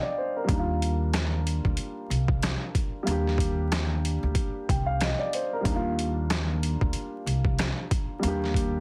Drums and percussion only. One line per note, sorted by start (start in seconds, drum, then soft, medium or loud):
0.49 kick loud
0.49 closed hi-hat loud
0.82 closed hi-hat medium
1.13 cross-stick medium
1.13 snare loud
1.13 closed hi-hat medium
1.47 closed hi-hat medium
1.65 kick medium
1.77 closed hi-hat medium
2.11 closed hi-hat medium
2.28 kick loud
2.43 cross-stick medium
2.43 snare loud
2.43 closed hi-hat medium
2.75 kick medium
2.75 closed hi-hat medium
3.07 closed hi-hat loud
3.27 snare soft
3.38 kick loud
3.38 closed hi-hat medium
3.72 cross-stick medium
3.72 snare loud
3.72 closed hi-hat medium
4.05 closed hi-hat medium
4.35 kick loud
4.35 closed hi-hat medium
4.69 kick loud
4.69 closed hi-hat medium
5.01 cross-stick medium
5.01 snare loud
5.01 closed hi-hat medium
5.33 closed hi-hat medium
5.65 kick loud
5.65 closed hi-hat loud
5.99 closed hi-hat medium
6.30 cross-stick medium
6.30 snare loud
6.30 closed hi-hat medium
6.63 closed hi-hat medium
6.81 kick medium
6.93 closed hi-hat medium
7.27 closed hi-hat medium
7.45 kick loud
7.59 cross-stick medium
7.59 snare loud
7.59 closed hi-hat medium
7.91 kick medium
7.91 closed hi-hat medium
8.23 closed hi-hat loud
8.44 snare soft
8.54 kick medium
8.54 closed hi-hat medium